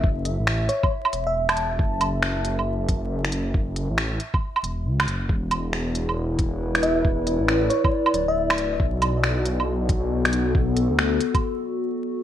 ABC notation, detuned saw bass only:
X:1
M:4/4
L:1/16
Q:"Swing 16ths" 1/4=137
K:F#m
V:1 name="Detuned saw bass" clef=bass
F,,,3 A,,,3 z4 E,,,6 | F,,,12- F,,,2 F,,,2 | F,,,3 A,,,3 z4 E,,,2 C,,2 F,,,2 | E,,,12- E,,,2 E,,,2 |
E,,,3 A,,,3 z4 D,,,6 | B,,,12- B,,,2 B,,,2 | B,,,3 D,,3 z8 z2 |]